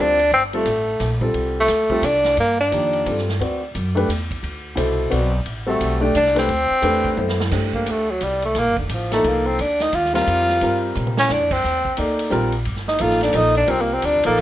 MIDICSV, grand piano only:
0, 0, Header, 1, 2, 480
1, 0, Start_track
1, 0, Tempo, 343053
1, 442, Time_signature, 3, 2, 24, 8
1, 20167, End_track
2, 0, Start_track
2, 0, Title_t, "Grand piano"
2, 0, Program_c, 0, 0
2, 0, Note_on_c, 0, 55, 61
2, 0, Note_on_c, 0, 60, 64
2, 0, Note_on_c, 0, 65, 58
2, 0, Note_on_c, 0, 72, 69
2, 235, Note_off_c, 0, 55, 0
2, 240, Note_off_c, 0, 60, 0
2, 243, Note_off_c, 0, 65, 0
2, 248, Note_off_c, 0, 72, 0
2, 748, Note_on_c, 0, 55, 69
2, 757, Note_on_c, 0, 60, 65
2, 763, Note_on_c, 0, 69, 81
2, 765, Note_on_c, 0, 65, 68
2, 907, Note_off_c, 0, 55, 0
2, 911, Note_off_c, 0, 60, 0
2, 915, Note_off_c, 0, 65, 0
2, 915, Note_off_c, 0, 69, 0
2, 1691, Note_on_c, 0, 55, 61
2, 1702, Note_on_c, 0, 60, 59
2, 1712, Note_on_c, 0, 65, 55
2, 1713, Note_on_c, 0, 69, 68
2, 2321, Note_off_c, 0, 55, 0
2, 2327, Note_off_c, 0, 60, 0
2, 2332, Note_off_c, 0, 65, 0
2, 2332, Note_off_c, 0, 69, 0
2, 2662, Note_on_c, 0, 55, 74
2, 2674, Note_on_c, 0, 60, 61
2, 2682, Note_on_c, 0, 65, 70
2, 2692, Note_on_c, 0, 69, 76
2, 2825, Note_off_c, 0, 55, 0
2, 2830, Note_off_c, 0, 60, 0
2, 2835, Note_off_c, 0, 65, 0
2, 2839, Note_off_c, 0, 69, 0
2, 3798, Note_on_c, 0, 53, 60
2, 3806, Note_on_c, 0, 58, 55
2, 3818, Note_on_c, 0, 51, 54
2, 3821, Note_on_c, 0, 67, 60
2, 4264, Note_off_c, 0, 53, 0
2, 4268, Note_off_c, 0, 58, 0
2, 4274, Note_off_c, 0, 51, 0
2, 4276, Note_off_c, 0, 67, 0
2, 4293, Note_on_c, 0, 55, 53
2, 4297, Note_on_c, 0, 60, 47
2, 4301, Note_on_c, 0, 65, 53
2, 4317, Note_on_c, 0, 69, 55
2, 4561, Note_off_c, 0, 55, 0
2, 4563, Note_off_c, 0, 60, 0
2, 4565, Note_off_c, 0, 65, 0
2, 4573, Note_off_c, 0, 69, 0
2, 4768, Note_on_c, 0, 60, 62
2, 4768, Note_on_c, 0, 66, 59
2, 4771, Note_on_c, 0, 71, 55
2, 4785, Note_on_c, 0, 74, 62
2, 5038, Note_off_c, 0, 60, 0
2, 5038, Note_off_c, 0, 66, 0
2, 5040, Note_off_c, 0, 71, 0
2, 5047, Note_off_c, 0, 74, 0
2, 5525, Note_on_c, 0, 57, 71
2, 5531, Note_on_c, 0, 62, 62
2, 5539, Note_on_c, 0, 67, 69
2, 5557, Note_on_c, 0, 71, 75
2, 5697, Note_off_c, 0, 57, 0
2, 5700, Note_off_c, 0, 62, 0
2, 5704, Note_off_c, 0, 67, 0
2, 5713, Note_off_c, 0, 71, 0
2, 6653, Note_on_c, 0, 47, 67
2, 6658, Note_on_c, 0, 64, 64
2, 6667, Note_on_c, 0, 69, 68
2, 6676, Note_on_c, 0, 72, 78
2, 7132, Note_off_c, 0, 47, 0
2, 7135, Note_off_c, 0, 64, 0
2, 7139, Note_off_c, 0, 69, 0
2, 7139, Note_on_c, 0, 60, 63
2, 7144, Note_off_c, 0, 72, 0
2, 7145, Note_on_c, 0, 66, 63
2, 7149, Note_on_c, 0, 71, 63
2, 7164, Note_on_c, 0, 74, 67
2, 7424, Note_off_c, 0, 60, 0
2, 7428, Note_off_c, 0, 66, 0
2, 7429, Note_off_c, 0, 71, 0
2, 7437, Note_off_c, 0, 74, 0
2, 7927, Note_on_c, 0, 60, 70
2, 7929, Note_on_c, 0, 55, 68
2, 7937, Note_on_c, 0, 66, 65
2, 7937, Note_on_c, 0, 69, 77
2, 8388, Note_off_c, 0, 60, 0
2, 8389, Note_off_c, 0, 55, 0
2, 8393, Note_off_c, 0, 66, 0
2, 8393, Note_off_c, 0, 69, 0
2, 8401, Note_on_c, 0, 57, 80
2, 8409, Note_on_c, 0, 62, 70
2, 8417, Note_on_c, 0, 67, 69
2, 8420, Note_on_c, 0, 74, 88
2, 8576, Note_off_c, 0, 57, 0
2, 8580, Note_off_c, 0, 62, 0
2, 8584, Note_off_c, 0, 67, 0
2, 8585, Note_off_c, 0, 74, 0
2, 8879, Note_on_c, 0, 57, 69
2, 8884, Note_on_c, 0, 62, 64
2, 8898, Note_on_c, 0, 67, 72
2, 8902, Note_on_c, 0, 71, 76
2, 9055, Note_off_c, 0, 57, 0
2, 9057, Note_off_c, 0, 62, 0
2, 9064, Note_off_c, 0, 67, 0
2, 9066, Note_off_c, 0, 71, 0
2, 9545, Note_on_c, 0, 57, 69
2, 9556, Note_on_c, 0, 62, 61
2, 9560, Note_on_c, 0, 67, 60
2, 9567, Note_on_c, 0, 71, 70
2, 10018, Note_off_c, 0, 57, 0
2, 10024, Note_off_c, 0, 62, 0
2, 10024, Note_on_c, 0, 59, 57
2, 10026, Note_off_c, 0, 67, 0
2, 10030, Note_off_c, 0, 71, 0
2, 10037, Note_on_c, 0, 64, 56
2, 10049, Note_on_c, 0, 69, 59
2, 10052, Note_on_c, 0, 72, 69
2, 10307, Note_off_c, 0, 59, 0
2, 10314, Note_off_c, 0, 64, 0
2, 10320, Note_off_c, 0, 69, 0
2, 10321, Note_off_c, 0, 72, 0
2, 10508, Note_on_c, 0, 57, 53
2, 10511, Note_on_c, 0, 62, 47
2, 10528, Note_on_c, 0, 72, 61
2, 10529, Note_on_c, 0, 67, 54
2, 11239, Note_off_c, 0, 57, 0
2, 11241, Note_off_c, 0, 62, 0
2, 11250, Note_off_c, 0, 67, 0
2, 11250, Note_off_c, 0, 72, 0
2, 12757, Note_on_c, 0, 53, 67
2, 12761, Note_on_c, 0, 58, 67
2, 12771, Note_on_c, 0, 69, 85
2, 12773, Note_on_c, 0, 63, 65
2, 13376, Note_off_c, 0, 53, 0
2, 13378, Note_off_c, 0, 58, 0
2, 13384, Note_off_c, 0, 69, 0
2, 13385, Note_off_c, 0, 63, 0
2, 14180, Note_on_c, 0, 55, 78
2, 14191, Note_on_c, 0, 60, 66
2, 14201, Note_on_c, 0, 65, 76
2, 14208, Note_on_c, 0, 70, 80
2, 14808, Note_off_c, 0, 55, 0
2, 14813, Note_off_c, 0, 60, 0
2, 14818, Note_off_c, 0, 65, 0
2, 14821, Note_off_c, 0, 70, 0
2, 14845, Note_on_c, 0, 55, 64
2, 14861, Note_on_c, 0, 60, 62
2, 14870, Note_on_c, 0, 65, 54
2, 14873, Note_on_c, 0, 70, 77
2, 15568, Note_off_c, 0, 55, 0
2, 15576, Note_off_c, 0, 60, 0
2, 15580, Note_off_c, 0, 65, 0
2, 15581, Note_off_c, 0, 70, 0
2, 16750, Note_on_c, 0, 58, 65
2, 16760, Note_on_c, 0, 63, 64
2, 16766, Note_on_c, 0, 69, 53
2, 16770, Note_on_c, 0, 74, 67
2, 17214, Note_on_c, 0, 55, 75
2, 17220, Note_off_c, 0, 58, 0
2, 17220, Note_on_c, 0, 60, 71
2, 17225, Note_off_c, 0, 63, 0
2, 17228, Note_off_c, 0, 69, 0
2, 17230, Note_off_c, 0, 74, 0
2, 17236, Note_on_c, 0, 65, 78
2, 17242, Note_on_c, 0, 70, 81
2, 17501, Note_off_c, 0, 55, 0
2, 17504, Note_off_c, 0, 60, 0
2, 17512, Note_off_c, 0, 65, 0
2, 17515, Note_off_c, 0, 70, 0
2, 18183, Note_on_c, 0, 53, 64
2, 18195, Note_on_c, 0, 63, 61
2, 18199, Note_on_c, 0, 58, 60
2, 18204, Note_on_c, 0, 69, 73
2, 18636, Note_off_c, 0, 53, 0
2, 18644, Note_off_c, 0, 58, 0
2, 18645, Note_off_c, 0, 63, 0
2, 18654, Note_off_c, 0, 69, 0
2, 18657, Note_on_c, 0, 53, 65
2, 18665, Note_on_c, 0, 58, 58
2, 18666, Note_on_c, 0, 63, 60
2, 18675, Note_on_c, 0, 69, 73
2, 18942, Note_off_c, 0, 53, 0
2, 18946, Note_off_c, 0, 58, 0
2, 18947, Note_off_c, 0, 63, 0
2, 18951, Note_off_c, 0, 69, 0
2, 19125, Note_on_c, 0, 55, 62
2, 19135, Note_on_c, 0, 60, 63
2, 19141, Note_on_c, 0, 65, 66
2, 19142, Note_on_c, 0, 70, 79
2, 19865, Note_off_c, 0, 55, 0
2, 19870, Note_off_c, 0, 60, 0
2, 19873, Note_off_c, 0, 65, 0
2, 19874, Note_off_c, 0, 70, 0
2, 19935, Note_on_c, 0, 53, 86
2, 19942, Note_on_c, 0, 58, 74
2, 19951, Note_on_c, 0, 63, 73
2, 19959, Note_on_c, 0, 69, 83
2, 20100, Note_off_c, 0, 53, 0
2, 20104, Note_off_c, 0, 58, 0
2, 20108, Note_off_c, 0, 63, 0
2, 20112, Note_off_c, 0, 69, 0
2, 20167, End_track
0, 0, End_of_file